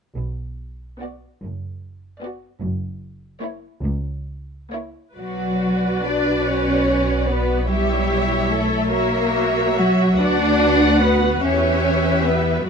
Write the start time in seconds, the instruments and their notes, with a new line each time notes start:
0.15 double bass section B1, cello section B2
1.00 viola section B3, violin section F#4 D5
1.42 double bass section F#1, cello section F#2
2.21 viola section B3, violin section F#4 D5
2.60 double bass section F#1, cello section F#2
3.41 viola section A#3, violin section E4 C#5
3.83 double bass section C#2, cello section C#2
4.70 viola section A#3, violin section E4 C#5
5.15 double bass section B1, cello section F#3, viola section F#4 B4, violin section F#4 D5
6.02 cello section D4, violin section D5
6.44 cello section C#4, violin section C#5
7.27 cello section B3, violin section B4
7.67 cello section G3, viola section E4 C#5, violin section G4 E5
8.49 cello section A3, violin section A4
8.90 cello section A#3, viola section F#4 C#5, violin section A#4 E5
9.77 cello section F#3, violin section F#4
10.20 double bass section D2, cello section D4, viola section F#4 B4, violin section D5 F#5
11.01 cello section B3, violin section B4
11.41 double bass section E2, cello section C#4, viola section G4 B4, violin section C#5 E5
12.25 cello section B3, violin section B4